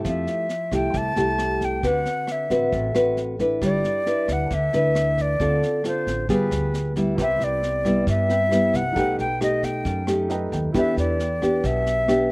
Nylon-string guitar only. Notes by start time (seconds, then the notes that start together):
Already playing: A3 E4 G4
0.05 F3
0.72 A3 E4 G4
0.94 C3
1.17 A3 E4 G4
1.83 D3 C4 F#4 B4
2.50 C4 F#4 B4
2.73 A2
2.95 C4 F#4 B4
3.40 D4 E4 B4
3.62 G3
4.06 D4 E4 B4
4.50 D3
4.74 D4 E4 B4
5.40 D3 C4 F4 A4
5.85 C4 F4 A4
6.29 G3 B3 F4 G#4
6.96 G3 B3 E4
7.18 C3
7.85 G3 B3 E4
8.07 G2
8.51 G3 B3 E4
8.96 B2 A3 D#4 G4
9.40 A3 D#4 G4
9.85 F#2
10.07 A3 D#4 G4
10.74 E3 B3 D4 G4
11.42 B3 D4 G4
11.63 B2
12.08 B3 D4 G4